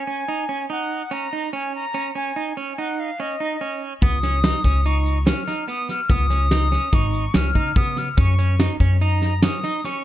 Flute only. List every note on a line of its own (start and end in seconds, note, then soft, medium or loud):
0.00 0.67 G#5 loud
0.71 1.14 F#5 medium
1.13 1.54 A#5 medium
1.54 1.73 G#5 medium
1.75 2.13 A#5 loud
2.17 2.54 G#5 medium
2.72 2.80 G#5 medium
2.79 3.01 F#5 medium
3.00 3.22 F5 medium
3.20 3.82 D#5 medium
4.03 4.88 D#6 loud
4.86 5.27 C#6 medium
5.28 5.66 F6 medium
5.69 5.88 D#6 loud
5.90 6.12 F6 loud
6.11 6.96 D#6 loud
6.94 7.37 C#6 medium
7.36 7.79 F6 medium
7.78 8.00 D#6 medium
7.98 8.18 F6 loud
8.19 8.71 C#6 loud
9.02 9.45 A#5 medium
9.43 9.86 D#6 medium
9.85 10.04 C#6 medium